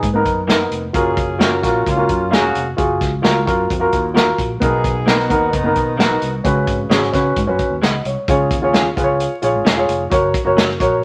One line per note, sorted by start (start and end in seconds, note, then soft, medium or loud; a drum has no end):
0.03 0.25 G#2 medium
0.03 kick medium
0.03 closed hi-hat medium
0.13 0.39 B3 medium
0.13 0.40 D#4 medium
0.13 0.40 A#4 medium
0.25 0.64 F#2 medium
0.25 kick medium
0.25 closed hi-hat medium
0.47 0.58 A#3 medium
0.47 0.82 B3 medium
0.47 0.58 D#4 medium
0.47 0.82 D#4 medium
0.47 0.58 F#4 medium
0.47 0.59 A#4 medium
0.47 0.83 A#4 medium
0.47 snare loud
0.47 closed hi-hat medium
0.71 0.91 F1 medium
0.71 closed hi-hat medium
0.93 1.60 F#1 medium
0.93 1.37 C#4 medium
0.93 1.27 F4 medium
0.93 1.37 F4 medium
0.93 1.28 F#4 medium
0.93 1.37 G#4 medium
0.93 1.28 A#4 medium
0.93 kick loud
0.93 closed hi-hat medium
1.17 kick medium
1.17 closed hi-hat medium
1.39 1.83 A#3 medium
1.39 1.50 A#3 medium
1.39 1.83 C#4 medium
1.39 1.50 C#4 medium
1.39 1.56 F4 medium
1.39 1.50 F4 medium
1.39 1.57 F#4 medium
1.39 1.83 F#4 medium
1.39 1.57 A#4 medium
1.39 1.51 A#4 medium
1.39 snare loud
1.39 closed hi-hat medium
1.62 1.83 A#1 medium
1.62 1.88 F4 medium
1.62 1.88 F#4 medium
1.62 1.89 A#4 medium
1.62 kick medium
1.62 snare soft
1.62 closed hi-hat medium
1.86 2.06 C#2 medium
1.86 2.29 A#3 medium
1.86 2.29 C#4 medium
1.86 2.29 F4 medium
1.86 kick medium
1.86 closed hi-hat medium
1.96 2.22 F4 medium
1.96 2.23 F#4 medium
1.96 2.23 A#4 medium
2.09 2.29 F#2 medium
2.09 kick medium
2.09 closed hi-hat medium
2.31 2.51 E1 medium
2.31 2.41 A#3 medium
2.31 2.65 A#3 medium
2.31 2.42 C#4 medium
2.31 2.65 C#4 medium
2.31 2.42 F4 medium
2.31 2.65 F#4 medium
2.31 2.66 G#4 medium
2.31 2.42 A#4 medium
2.31 2.65 F5 medium
2.31 snare loud
2.31 closed hi-hat medium
2.55 2.75 F1 medium
2.55 closed hi-hat medium
2.77 2.98 F#1 medium
2.77 3.11 F4 medium
2.77 3.11 F#4 medium
2.77 3.12 G#4 medium
2.77 kick loud
2.77 closed hi-hat medium
3.01 3.21 C#2 medium
3.01 kick medium
3.01 snare soft
3.01 closed hi-hat medium
3.22 3.44 C#2 medium
3.22 3.33 A#3 medium
3.22 3.33 C#4 medium
3.22 3.40 F4 medium
3.22 3.34 F4 medium
3.22 3.40 F#4 medium
3.22 3.41 A#4 medium
3.22 3.34 A#4 medium
3.22 snare loud
3.22 closed hi-hat medium
3.46 3.67 F#2 medium
3.46 3.71 F4 medium
3.46 3.72 F#4 medium
3.46 3.72 A#4 medium
3.46 kick medium
3.46 closed hi-hat medium
3.70 3.89 F2 medium
3.70 kick medium
3.70 closed hi-hat medium
3.79 4.05 F4 medium
3.79 4.06 F#4 medium
3.79 4.06 A#4 medium
3.92 4.32 D#2 medium
3.92 kick medium
3.92 closed hi-hat medium
4.14 4.25 A#3 medium
4.14 4.25 C#4 medium
4.14 4.48 F4 medium
4.14 4.25 F4 medium
4.14 4.49 F#4 medium
4.14 4.49 A#4 medium
4.14 4.26 A#4 medium
4.14 snare loud
4.14 closed hi-hat medium
4.38 4.58 A#1 medium
4.38 kick medium
4.38 closed hi-hat medium
4.60 5.27 B1 medium
4.60 5.26 B2 medium
4.60 4.94 B3 medium
4.60 5.05 B3 medium
4.60 4.95 D#4 medium
4.60 5.05 D#4 medium
4.60 5.05 G#4 loud
4.60 4.95 A#4 medium
4.60 kick loud
4.60 closed hi-hat medium
4.84 kick medium
4.84 closed hi-hat medium
5.06 5.16 A#3 medium
5.06 5.24 B3 medium
5.06 5.50 B3 loud
5.06 5.17 D#4 medium
5.06 5.51 D#4 medium
5.06 5.24 D#4 medium
5.06 5.17 F#4 medium
5.06 5.50 F#4 loud
5.06 5.17 A#4 medium
5.06 5.24 A#4 medium
5.06 snare loud
5.06 closed hi-hat medium
5.20 snare soft
5.29 5.50 D#2 medium
5.29 5.55 B3 medium
5.29 5.55 D#4 medium
5.29 5.56 A#4 medium
5.29 kick medium
5.29 closed hi-hat medium
5.52 5.73 F#1 medium
5.52 5.96 D#3 medium
5.52 5.96 B3 medium
5.52 5.96 D#4 loud
5.52 kick medium
5.52 closed hi-hat medium
5.64 5.89 B3 medium
5.64 5.90 D#4 medium
5.64 5.90 A#4 medium
5.75 6.00 B2 medium
5.75 kick medium
5.75 closed hi-hat medium
5.97 6.18 B1 medium
5.97 6.08 A#3 medium
5.97 6.32 B3 medium
5.97 6.08 D#4 medium
5.97 6.32 D#4 medium
5.97 6.09 F#4 medium
5.97 6.32 F#4 medium
5.97 6.09 A#4 medium
5.97 6.33 A#4 medium
5.97 snare loud
5.97 closed hi-hat medium
6.22 6.41 C2 medium
6.22 closed hi-hat medium
6.44 6.64 C#2 medium
6.44 7.10 C#3 medium
6.44 6.78 C#4 medium
6.44 6.78 F#4 medium
6.44 6.79 B4 medium
6.44 kick loud
6.44 closed hi-hat medium
6.67 6.87 G#1 medium
6.67 kick loud
6.67 closed hi-hat medium
6.90 7.09 G#1 medium
6.90 7.00 G#3 medium
6.90 7.07 C#4 medium
6.90 7.00 C#4 medium
6.90 7.08 F#4 medium
6.90 7.01 F#4 medium
6.90 7.08 G#4 medium
6.90 7.01 B4 medium
6.90 snare loud
6.90 closed hi-hat medium
7.03 snare soft
7.12 7.33 C#3 medium
7.12 7.38 C#4 medium
7.12 7.39 F#4 medium
7.12 7.39 B4 medium
7.12 kick medium
7.12 snare soft
7.12 closed hi-hat medium
7.36 7.46 G#2 medium
7.36 kick medium
7.36 closed hi-hat medium
7.47 7.57 F#2 medium
7.47 7.73 C#4 medium
7.47 7.73 F#4 medium
7.47 7.73 B4 medium
7.59 kick medium
7.59 closed hi-hat medium
7.70 7.80 D#2 medium
7.81 8.01 C#2 medium
7.81 7.92 G#3 medium
7.81 7.92 C#4 medium
7.81 7.92 F#4 medium
7.81 7.93 B4 medium
7.81 8.05 D#5 medium
7.81 snare loud
7.81 closed hi-hat medium
8.05 8.15 C2 medium
8.05 8.29 C#5 medium
8.05 closed hi-hat medium
8.28 8.47 C#2 loud
8.28 8.93 C#3 medium
8.28 8.53 F4 medium
8.28 8.54 G#4 medium
8.28 8.54 C#5 medium
8.28 kick loud
8.28 closed hi-hat medium
8.51 8.90 D#2 medium
8.51 kick loud
8.51 closed hi-hat medium
8.62 8.87 F4 medium
8.62 8.88 G#4 medium
8.62 8.88 C#5 medium
8.73 8.83 C#4 medium
8.73 8.84 F4 medium
8.73 8.84 G#4 medium
8.73 8.84 C#5 medium
8.73 snare loud
8.73 closed hi-hat medium
8.96 9.26 C#2 medium
8.96 9.30 F4 medium
8.96 9.31 G#4 medium
8.96 9.03 B4 medium
8.96 kick medium
8.96 closed hi-hat medium
9.04 9.34 C#5 medium
9.20 closed hi-hat medium
9.42 9.52 A#1 medium
9.42 9.67 F4 medium
9.42 9.68 G#4 medium
9.42 9.68 C#5 medium
9.42 closed hi-hat medium
9.54 9.64 G#1 medium
9.65 9.85 E1 medium
9.65 9.75 C#4 medium
9.65 9.75 F4 medium
9.65 9.76 G#4 medium
9.65 9.76 C#5 medium
9.65 snare loud
9.65 closed hi-hat medium
9.77 10.02 F4 medium
9.77 10.03 G#4 medium
9.77 10.03 C#5 medium
9.89 10.08 F1 medium
9.89 closed hi-hat medium
10.10 10.31 F#1 loud
10.10 10.36 F#4 medium
10.10 10.37 A#4 medium
10.10 10.37 C#5 medium
10.10 kick loud
10.10 closed hi-hat medium
10.34 kick medium
10.34 closed hi-hat medium
10.45 10.75 F#1 medium
10.45 10.70 F#4 medium
10.45 10.71 A#4 medium
10.45 10.71 C#5 medium
10.57 10.67 C#4 medium
10.57 10.67 F#4 medium
10.57 10.67 A#4 medium
10.57 10.68 C#5 medium
10.57 snare loud
10.57 closed hi-hat medium
10.70 snare soft
10.80 11.04 A#1 medium
10.80 11.04 F#4 medium
10.80 11.04 A#4 medium
10.80 11.04 C#5 medium
10.80 kick medium
10.80 closed hi-hat medium